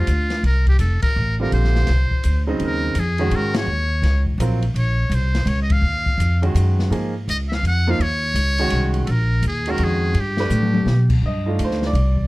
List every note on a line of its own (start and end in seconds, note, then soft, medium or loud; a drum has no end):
0.00 0.44 F4 medium
0.07 0.42 D2 medium
0.07 hi-hat pedal medium
0.07 ride medium
0.30 snare soft
0.30 ride soft
0.43 0.78 C2 medium
0.43 0.66 A#4 medium
0.43 ride medium
0.67 0.79 G4 medium
0.67 kick medium
0.67 ride soft
0.79 1.01 F1 medium
0.79 1.01 A4 medium
0.79 hi-hat pedal medium
0.79 ride medium
1.02 1.36 A#4 medium
1.02 muted upright bass stroke soft
1.02 kick medium
1.02 ride medium
1.16 1.51 A1 medium
1.40 1.86 D3 medium
1.40 1.86 G3 medium
1.40 1.86 C4 medium
1.40 1.87 F4 medium
1.40 1.52 A#4 medium
1.52 1.87 A#1 medium
1.52 2.44 C5 medium
1.52 ride medium
1.64 snare soft
1.75 snare soft
1.87 2.10 C2 medium
1.87 snare soft
1.87 ride medium
2.11 muted upright bass stroke soft
2.11 kick soft
2.23 2.59 D2 medium
2.23 hi-hat pedal soft
2.23 ride medium
2.47 2.94 C#3 medium
2.47 2.94 F#3 medium
2.47 2.94 C4 medium
2.47 2.94 D#4 medium
2.60 2.94 D#2 medium
2.60 ride medium
2.65 3.01 A#4 medium
2.95 3.30 F2 medium
2.95 hi-hat pedal soft
2.95 ride medium
3.00 3.37 G#4 medium
3.18 3.66 D#3 medium
3.18 3.66 G#3 medium
3.18 3.66 C#4 medium
3.18 3.66 F#4 medium
3.18 ride soft
3.31 3.66 G#2 medium
3.31 ride medium
3.36 3.57 A#4 medium
3.54 4.24 C#5 medium
3.54 snare medium
3.54 ride medium
3.67 4.01 D#2 medium
4.02 4.37 C#2 medium
4.02 snare soft
4.02 ride medium
4.27 kick medium
4.38 4.74 A#1 medium
4.38 4.61 F#3 medium
4.38 4.61 C4 medium
4.38 4.61 F4 medium
4.38 4.62 A#4 medium
4.38 hi-hat pedal medium
4.38 ride medium
4.62 ride soft
4.74 5.09 A#1 medium
4.74 ride medium
4.78 5.16 C#5 medium
5.09 5.45 C2 medium
5.09 hi-hat pedal medium
5.09 ride medium
5.15 5.50 C5 medium
5.35 snare soft
5.35 ride soft
5.46 5.81 C#2 medium
5.46 5.62 C#5 medium
5.46 ride medium
5.63 5.74 D#5 medium
5.70 6.43 F5 medium
5.70 kick medium
5.70 ride medium
5.81 6.17 D#2 medium
6.06 kick medium
6.18 6.54 F2 medium
6.18 hi-hat pedal soft
6.18 ride medium
6.42 6.89 D#3 medium
6.42 6.89 G#3 medium
6.42 6.89 C#4 medium
6.42 6.89 F#4 medium
6.42 ride soft
6.54 6.90 F#2 medium
6.54 hi-hat pedal medium
6.54 ride medium
6.79 snare soft
6.90 7.26 G#2 medium
6.90 7.12 F3 medium
6.90 7.12 A#3 medium
6.90 7.13 D#4 soft
6.90 7.13 G#4 medium
6.90 ride medium
7.28 7.62 C#2 medium
7.28 7.37 D#5 medium
7.28 hi-hat pedal medium
7.28 ride medium
7.49 7.56 E5 medium
7.49 snare soft
7.54 7.65 F5 medium
7.63 7.98 F2 medium
7.63 ride medium
7.67 7.92 F#5 medium
7.87 7.98 F3 medium
7.87 7.99 A#3 medium
7.87 7.99 D#4 medium
7.87 7.99 F4 medium
7.87 8.03 F5 medium
7.99 8.34 D#2 medium
7.99 8.95 C#5 loud
7.99 ride medium
8.34 8.70 C#2 medium
8.34 hi-hat pedal medium
8.34 ride medium
8.58 9.05 D#3 medium
8.58 9.05 G#3 medium
8.58 9.06 C#4 medium
8.58 9.06 F#4 medium
8.58 ride soft
8.70 9.06 C2 medium
8.70 ride medium
8.94 ride soft
9.05 9.42 A#1 medium
9.05 9.13 A4 medium
9.05 ride medium
9.11 9.45 A#4 loud
9.42 9.77 D#2 medium
9.42 hi-hat pedal soft
9.42 ride medium
9.48 9.72 G#4 medium
9.65 10.13 D#3 medium
9.65 10.13 G#3 medium
9.65 10.14 C#4 medium
9.65 10.13 F#4 medium
9.65 ride soft
9.71 9.85 A#4 medium
9.78 10.14 F2 medium
9.78 ride medium
9.84 10.22 G#4 medium
10.14 10.49 G2 medium
10.14 ride medium
10.20 11.13 G4 medium
10.37 10.84 A3 medium
10.37 10.84 D4 medium
10.37 10.85 G4 medium
10.37 10.85 B4 medium
10.37 snare soft
10.50 10.85 A2 medium
10.50 hi-hat pedal medium
10.50 high tom soft
10.62 high tom medium
10.74 high tom medium
10.86 11.21 B2 medium
10.86 snare medium
11.10 kick medium
11.10 crash medium
11.22 11.57 G2 medium
11.22 11.58 D#5 medium
11.46 11.93 A3 medium
11.46 11.93 D4 soft
11.46 11.92 D#4 medium
11.46 11.93 F4 medium
11.59 11.93 D2 medium
11.59 hi-hat pedal medium
11.59 ride medium
11.64 11.84 C5 medium
11.71 snare soft
11.82 snare soft
11.87 12.27 D5 medium
11.93 12.27 C2 medium
11.93 ride medium
12.17 kick medium